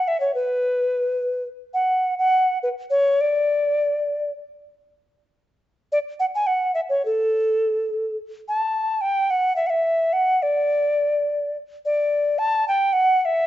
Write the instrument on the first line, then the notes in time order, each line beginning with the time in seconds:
ocarina
0.08 E5
0.20 C#5
0.35 B4
1.74 F#5
2.19 F#5
2.63 B4
2.90 C#5
3.21 D5
5.92 D5
6.20 F#5
6.35 G#5
6.47 F#5
6.75 E5
6.89 C#5
7.05 A4
8.48 A5
9.01 G5
9.30 F#5
9.56 E5
9.67 E5 F#5
10.13 F#5
10.43 D5
11.85 D5
12.39 A5
12.68 G5
12.93 F#5
13.21 F#5
13.25 E5